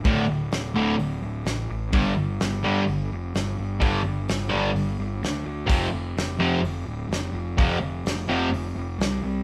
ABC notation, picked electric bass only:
X:1
M:4/4
L:1/8
Q:1/4=127
K:Gdor
V:1 name="Picked electric bass" clef=bass
D,,, D,,, D,,, D,,, D,,, D,,, A,,, A,,, | G,,, G,,, G,,, G,, G,,, F,,, G,,, G,,, | G,,, G,,, G,,, G,,, G,,, G,,, D,, D,, | F,,, F,,, F,,, F,, F,,, D,,, F,,, F,,, |
F,,, F,,, F,,, F,,, F,,, F,,, C,, C,, |]